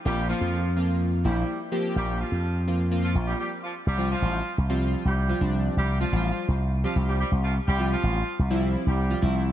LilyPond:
<<
  \new Staff \with { instrumentName = "Horn section" } { \time 4/4 \key c \mixolydian \tempo 4 = 126 <g g'>8 <f f'>4 r4 <g g'>8. r8. | <g g'>8 <f f'>4 r8. <f f'>16 r16 <g g'>16 <g g'>16 r16 <f f'>16 r16 | <g g'>8 <f f'>4 r4 <g g'>8. r8. | <g g'>8 <f f'>4 r8. <f f'>16 r16 <g g'>16 <g g'>16 r16 <f f'>16 r16 |
<g g'>8 <f f'>4 r4 <g g'>8. r8. | }
  \new Staff \with { instrumentName = "Synth keys" } { \time 4/4 \key c \mixolydian <f bes c' f'>16 r16 <f bes c' f'>8 r8 <f bes c' f'>8 r8 <f bes c' e'>8 r8 <f bes c' g'>8~ | <f bes c' g'>8 r4 <f bes c' f'>16 r16 <f bes c' f'>4 r4 | r16 <f g c' f'>8. r8. <f g c' f'>8. r8 <f g c' f'>16 <f g c' d'>8. | r8 <f g c' f'>16 <f g c' f'>8. r8. <f g c' g'>4 r8. |
r16 <f g c' f'>8. r8. <f g c' e'>8. r8 <f g c' f'>16 <f g c' e'>8. | }
  \new Staff \with { instrumentName = "Slap bass" } { \clef bass \time 4/4 \key c \mixolydian bes,,8. f,4.~ f,16 bes,,8 r4 | bes,,8. f,4.~ f,16 bes,,8 r4 | c,8. a,,8 r16 c,4 c,8. c,8. | c,8. a,,8 r16 c,4 c,8. c,8. |
c,8. a,,8 r16 c,4 c,8. c,8. | }
>>